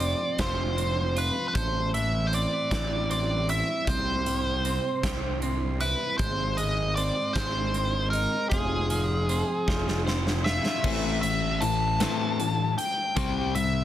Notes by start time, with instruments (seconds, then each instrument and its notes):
Already playing: fingered electric bass F1, clean electric guitar F3, lead electric guitar D5
0.00 clean electric guitar C4, closed hi-hat
0.39 fingered electric bass F1, clean electric guitar F3, lead electric guitar C5, kick, snare, closed hi-hat
0.78 clean electric guitar C4, closed hi-hat
1.16 clean electric guitar F4, lead electric guitar B4, closed hi-hat
1.48 lead electric guitar B4
1.55 fingered electric bass A1, clean electric guitar A2, lead electric guitar C5, kick, closed hi-hat
1.94 clean electric guitar E3, lead electric guitar E5, closed hi-hat
2.27 lead electric guitar C5
2.33 clean electric guitar C4, lead electric guitar D5, closed hi-hat
2.71 fingered electric bass A1, clean electric guitar E3, kick, snare, closed hi-hat
3.10 clean electric guitar C4, lead electric guitar D5, closed hi-hat
3.49 clean electric guitar E4, lead electric guitar E5, closed hi-hat
3.87 fingered electric bass C2, clean electric guitar C3, lead electric guitar C5, kick, closed hi-hat
4.26 clean electric guitar G3, closed hi-hat
4.65 clean electric guitar C4, closed hi-hat
5.03 fingered electric bass C2, clean electric guitar G3, kick, snare, closed hi-hat
5.42 clean electric guitar C4, closed hi-hat
5.80 clean electric guitar E4, lead electric guitar B4, closed hi-hat
6.18 fingered electric bass G#1, clean electric guitar G#2, lead electric guitar C5, kick, closed hi-hat
6.57 clean electric guitar G#3, lead electric guitar D#5, closed hi-hat
6.95 clean electric guitar C4, lead electric guitar D5, closed hi-hat
7.33 fingered electric bass G#1, clean electric guitar G#3, lead electric guitar C5, kick, snare, closed hi-hat
7.74 clean electric guitar C4, closed hi-hat
8.10 clean electric guitar D#4, lead electric guitar A#4, closed hi-hat
8.49 fingered electric bass F1, clean electric guitar F3, lead electric guitar G#4, kick, closed hi-hat
8.90 clean electric guitar F3, closed hi-hat
9.29 clean electric guitar C4, closed hi-hat
9.68 fingered electric bass F1, clean electric guitar F3, kick, snare
9.88 snare
10.07 clean electric guitar C4, snare
10.27 snare
10.44 clean electric guitar F4, lead electric guitar E5, snare
10.66 snare
10.84 fingered electric bass A1, clean electric guitar A2 E3 C4, overdriven electric guitar A3, kick, crash
11.21 clean electric guitar A2 E3, lead electric guitar E5, closed hi-hat
11.61 clean electric guitar A2 E3, lead electric guitar A5, closed hi-hat
12.00 clean electric guitar A2 E3 C4, overdriven electric guitar A3, snare, closed hi-hat
12.39 clean electric guitar A2 E3, closed hi-hat
12.78 lead electric guitar G5, closed hi-hat
13.16 fingered electric bass C2, clean electric guitar C3 G3 C4, kick, closed hi-hat
13.55 clean electric guitar C3 G3, lead electric guitar E5, closed hi-hat